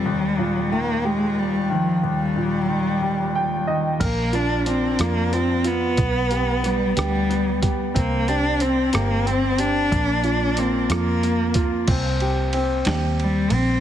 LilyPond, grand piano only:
\new Staff \with { instrumentName = "Grand piano" } { \time 6/8 \key c \minor \tempo 4. = 61 << { r2. | r2 g''8 ees''8 | r2. | r2. |
r2. | r2. | r2. | } \\ { ees,8 bes,8 ees8 g'4 ees8 | ees,8 bes,8 ees8 g4 ees8 | bes'8 f'8 d'8 f'8 f8 f'8 | b8 g'8 b8 g'8 b8 g'8 |
c'8 g'8 c'8 g'8 c'8 g'8 | bes8 f'8 bes8 f'8 bes8 f'8 | c'8 g'8 c'8 g'4. | } >> }